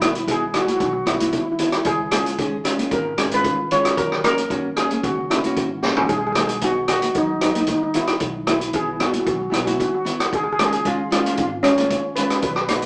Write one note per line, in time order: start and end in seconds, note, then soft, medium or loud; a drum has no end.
0.00 0.69 B1 loud
0.00 0.17 B3 medium
0.00 0.18 E4 medium
0.00 0.18 F#4 medium
0.00 cross-stick loud
0.00 closed hi-hat loud
0.00 high conga medium
0.00 low conga medium
0.05 0.16 E4 medium
0.15 closed hi-hat medium
0.28 0.44 B3 medium
0.28 0.44 E4 medium
0.28 0.45 F#4 medium
0.28 0.57 G#4 loud
0.28 kick medium
0.28 closed hi-hat medium
0.54 0.86 B3 medium
0.54 0.86 E4 medium
0.54 0.86 F#4 medium
0.54 0.64 F#4 medium
0.54 cross-stick medium
0.54 closed hi-hat medium
0.54 low conga medium
0.65 0.71 F#4 medium
0.65 closed hi-hat medium
0.65 high conga medium
0.72 0.78 F#4 medium
0.79 1.04 B1 loud
0.79 0.84 F#4 medium
0.79 kick loud
0.79 closed hi-hat medium
0.85 0.92 F#4 medium
0.93 1.00 F#4 medium
1.06 1.30 B1 loud
1.06 1.15 B3 medium
1.06 1.15 E4 medium
1.06 1.13 E4 loud
1.06 1.15 F#4 medium
1.06 cross-stick medium
1.06 closed hi-hat medium
1.14 1.21 E4 medium
1.20 1.44 B3 medium
1.20 1.44 E4 medium
1.20 1.27 E4 medium
1.20 1.45 F#4 medium
1.20 closed hi-hat medium
1.20 high conga medium
1.28 1.36 E4 medium
1.33 kick loud
1.33 closed hi-hat medium
1.38 1.44 E4 medium
1.45 1.51 E4 medium
1.52 1.59 E4 medium
1.59 1.86 B3 medium
1.59 1.86 E4 medium
1.59 1.66 E4 medium
1.59 1.87 F#4 medium
1.59 closed hi-hat medium
1.59 low conga medium
1.68 1.75 E4 medium
1.72 cross-stick medium
1.72 closed hi-hat medium
1.76 1.82 E4 medium
1.85 2.80 C#2 loud
1.85 2.11 G#4 loud
1.85 kick loud
1.85 closed hi-hat medium
2.11 2.29 G#3 medium
2.11 2.29 C#4 medium
2.11 2.29 F4 medium
2.11 2.95 G#4 loud
2.11 cross-stick loud
2.11 closed hi-hat loud
2.11 high conga medium
2.11 low conga medium
2.26 closed hi-hat medium
2.38 2.55 G#3 medium
2.38 2.55 C#4 medium
2.38 2.56 G#4 medium
2.38 kick loud
2.38 closed hi-hat medium
2.64 2.97 G#3 medium
2.64 2.97 C#4 medium
2.64 2.98 F4 medium
2.64 cross-stick medium
2.64 closed hi-hat medium
2.64 low conga medium
2.79 closed hi-hat medium
2.79 high conga medium
2.91 3.15 G#1 loud
2.91 3.35 A#4 loud
2.91 kick loud
2.91 closed hi-hat medium
3.17 3.42 G#1 loud
3.17 3.27 G#3 medium
3.17 3.27 C#4 medium
3.17 3.27 G#4 medium
3.17 cross-stick medium
3.17 closed hi-hat medium
3.31 3.56 G#3 medium
3.31 3.57 C#4 medium
3.31 3.57 F4 medium
3.31 3.74 B4 loud
3.31 closed hi-hat medium
3.44 kick loud
3.44 closed hi-hat medium
3.71 3.98 G#3 medium
3.71 3.98 C#4 medium
3.71 3.98 F4 medium
3.71 3.99 C#5 loud
3.71 closed hi-hat medium
3.71 low conga medium
3.85 cross-stick medium
3.85 closed hi-hat medium
3.97 4.92 F#2 loud
3.97 4.23 A#4 loud
3.97 kick loud
3.97 closed hi-hat medium
4.12 cross-stick medium
4.24 4.41 A#3 medium
4.24 4.41 C#4 medium
4.24 4.42 F#4 medium
4.24 4.74 A#4 loud
4.24 cross-stick loud
4.24 closed hi-hat medium
4.24 high conga medium
4.24 low conga medium
4.38 closed hi-hat medium
4.50 4.67 A#3 medium
4.50 4.68 C#4 medium
4.50 4.68 F#4 medium
4.50 kick loud
4.50 closed hi-hat medium
4.76 5.10 A#3 medium
4.76 5.10 C#4 medium
4.76 5.05 G#4 loud
4.76 5.10 G#4 medium
4.76 cross-stick medium
4.76 closed hi-hat medium
4.76 low conga medium
4.91 closed hi-hat medium
4.91 high conga medium
5.03 5.28 C#2 loud
5.03 5.16 F#4 medium
5.03 kick loud
5.03 closed hi-hat medium
5.30 5.54 C#2 medium
5.30 5.39 A#3 medium
5.30 5.39 C#4 medium
5.30 5.39 D#4 medium
5.30 5.80 E4 medium
5.30 cross-stick medium
5.30 closed hi-hat medium
5.44 5.68 A#3 medium
5.44 5.68 C#4 medium
5.44 5.69 F#4 medium
5.44 closed hi-hat medium
5.44 high conga medium
5.56 5.81 G#1 medium
5.56 kick loud
5.56 closed hi-hat medium
5.56 low conga medium
5.83 6.07 A#1 medium
5.83 6.10 A#3 medium
5.83 6.10 C#4 medium
5.83 6.10 F#4 medium
5.83 snare medium
5.83 low conga medium
5.96 floor tom loud
6.09 7.04 B1 medium
6.09 6.17 G#4 loud
6.09 kick loud
6.09 closed hi-hat medium
6.18 6.25 G#4 medium
6.27 6.31 G#4 medium
6.32 6.39 G#4 medium
6.32 cross-stick loud
6.32 closed hi-hat loud
6.32 high conga medium
6.32 low conga medium
6.37 6.53 B3 medium
6.37 6.53 D#4 medium
6.37 6.54 F#4 medium
6.37 6.46 G#4 medium
6.47 6.54 G#4 medium
6.47 closed hi-hat medium
6.61 6.79 B3 medium
6.61 6.80 D#4 medium
6.61 6.88 F#4 loud
6.61 6.80 F#4 medium
6.61 kick loud
6.61 closed hi-hat medium
6.88 7.21 B3 medium
6.88 7.21 D#4 medium
6.88 7.14 F#4 loud
6.88 7.22 F#4 loud
6.88 cross-stick medium
6.88 closed hi-hat medium
6.88 low conga medium
7.02 closed hi-hat medium
7.02 high conga medium
7.14 7.39 F#2 loud
7.14 7.29 D#4 loud
7.14 kick loud
7.14 closed hi-hat medium
7.41 7.66 F#2 loud
7.41 7.51 B3 medium
7.41 7.51 D#4 medium
7.41 7.51 D#4 loud
7.41 7.51 F#4 medium
7.41 cross-stick medium
7.41 closed hi-hat medium
7.53 7.79 B3 medium
7.53 7.59 D#4 medium
7.53 7.79 D#4 medium
7.53 7.80 F#4 medium
7.53 closed hi-hat medium
7.53 high conga medium
7.61 7.66 D#4 medium
7.67 7.74 D#4 medium
7.67 kick loud
7.67 closed hi-hat medium
7.75 7.82 D#4 medium
7.83 7.89 D#4 medium
7.94 8.21 B3 medium
7.94 8.21 D#4 medium
7.94 8.48 E4 loud
7.94 8.21 F#4 medium
7.94 closed hi-hat medium
7.94 low conga medium
8.07 cross-stick medium
8.07 closed hi-hat medium
8.20 9.15 B1 loud
8.20 kick loud
8.20 closed hi-hat medium
8.47 8.64 B3 medium
8.47 8.64 E4 medium
8.47 8.73 E4 medium
8.47 8.65 F#4 medium
8.47 cross-stick medium
8.47 closed hi-hat medium
8.47 high conga medium
8.47 low conga medium
8.61 closed hi-hat medium
8.73 8.90 B3 medium
8.73 8.91 E4 medium
8.73 8.91 F#4 medium
8.73 9.02 G#4 loud
8.73 kick loud
8.73 closed hi-hat medium
9.00 9.32 B3 medium
9.00 9.32 E4 medium
9.00 9.32 F#4 medium
9.00 9.09 F#4 medium
9.00 cross-stick medium
9.00 closed hi-hat medium
9.00 low conga medium
9.11 9.17 F#4 medium
9.11 closed hi-hat medium
9.11 high conga medium
9.20 9.24 F#4 medium
9.25 9.50 B1 loud
9.25 9.31 F#4 medium
9.25 kick loud
9.25 closed hi-hat medium
9.34 9.40 F#4 medium
9.42 9.47 F#4 medium
9.50 9.76 B1 loud
9.50 9.61 B3 medium
9.50 9.61 E4 medium
9.50 9.55 F#4 medium
9.50 9.61 F#4 medium
9.50 cross-stick medium
9.50 closed hi-hat medium
9.56 9.62 F#4 medium
9.65 9.90 B3 medium
9.65 9.91 E4 medium
9.65 9.70 F#4 medium
9.65 9.91 F#4 medium
9.65 closed hi-hat medium
9.65 high conga medium
9.73 9.77 F#4 medium
9.80 9.85 F#4 medium
9.80 kick loud
9.80 closed hi-hat medium
9.88 9.93 F#4 medium
9.95 10.00 F#4 medium
10.05 10.32 B3 medium
10.05 10.32 E4 medium
10.05 10.32 F#4 medium
10.05 closed hi-hat medium
10.05 low conga medium
10.20 cross-stick medium
10.20 closed hi-hat medium
10.32 11.27 C#2 medium
10.32 10.42 G#4 loud
10.32 kick loud
10.32 closed hi-hat medium
10.44 10.50 G#4 medium
10.52 10.57 G#4 loud
10.59 10.75 G#3 medium
10.59 10.76 C#4 medium
10.59 10.76 F4 medium
10.59 10.64 G#4 medium
10.59 cross-stick loud
10.59 closed hi-hat medium
10.59 high conga medium
10.59 low conga medium
10.65 10.72 G#4 loud
10.72 10.79 G#4 medium
10.72 closed hi-hat medium
10.85 11.01 G#3 medium
10.85 11.01 C#4 medium
10.85 11.02 F4 medium
10.85 11.11 F4 loud
10.85 kick medium
10.85 closed hi-hat medium
11.10 11.43 G#3 medium
11.10 11.43 C#4 medium
11.10 11.44 F4 medium
11.10 11.19 F4 loud
11.10 cross-stick medium
11.10 closed hi-hat loud
11.10 low conga medium
11.20 11.26 F4 medium
11.26 11.34 F4 medium
11.26 closed hi-hat medium
11.26 high conga medium
11.36 11.62 G#1 loud
11.36 11.39 F4 medium
11.36 kick loud
11.36 closed hi-hat medium
11.40 11.48 F4 medium
11.49 11.57 F4 medium
11.63 11.88 G#1 loud
11.63 11.72 G#3 medium
11.63 12.18 C#4 loud
11.63 11.72 C#4 medium
11.63 11.73 D#4 loud
11.63 cross-stick medium
11.63 closed hi-hat medium
11.77 12.01 G#3 medium
11.77 12.02 C#4 medium
11.77 12.02 F4 medium
11.77 closed hi-hat medium
11.77 high conga medium
11.90 kick loud
11.90 closed hi-hat medium
12.16 12.44 G#3 medium
12.16 12.44 C#4 medium
12.16 12.44 F4 medium
12.16 12.22 B4 medium
12.16 closed hi-hat medium
12.16 low conga medium
12.23 12.31 B4 medium
12.30 12.37 B4 medium
12.30 cross-stick medium
12.30 closed hi-hat medium
12.38 12.44 B4 medium
12.38 closed hi-hat medium
12.43 12.86 B1 loud
12.43 12.52 B4 medium
12.43 kick loud
12.53 12.61 B4 medium
12.53 cross-stick medium
12.62 12.68 B4 medium
12.68 12.86 B3 medium
12.68 12.86 D#4 medium
12.68 12.86 F#4 medium
12.68 12.74 B4 medium
12.68 cross-stick medium
12.68 closed hi-hat medium
12.68 high conga medium
12.68 low conga medium
12.75 12.83 B4 medium
12.82 closed hi-hat medium